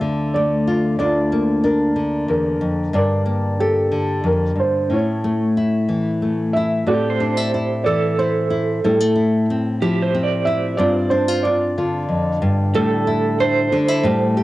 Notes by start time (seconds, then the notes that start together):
Already playing: D2 A3 C4 F4 E5
0.01 D3
0.34 A3 D5
0.67 F4
0.99 D2 D4 F4 D5
1.32 A#3
1.64 D4 A#4
1.96 D3
2.28 E2 A#4
2.61 F2
2.93 G2 D4 A#4 D5
3.26 A#3
3.60 G4 A4
3.92 D3
4.24 F2 A#4
4.56 G2 C5
4.90 A2 C#4 E4 C#5
5.24 A3
5.57 E4
5.89 E3
6.22 A3
6.53 E4 E5
6.87 A2 C4 G4 A4 D5
7.10 C5
7.20 D4
7.37 E4
7.54 E4
7.84 E3 E4 A4 D5
8.19 E4 C5
8.50 E4
8.84 A2 G3 E4 A4
9.00 A3
9.16 E4
9.50 C4
9.82 F3 E4 G4
10.03 C5
10.15 C4
10.23 D5
10.45 E4 E5
10.77 G2 C4 F4 D5
11.10 D4 C5
11.28 F4
11.43 D4 F4 D5
11.78 D3 F4
12.09 F2
12.42 G2
12.74 A2 G3 A4
13.07 E4
13.40 D4 C5
13.72 D3 D4
13.88 E4
14.03 A2 G3
14.37 G4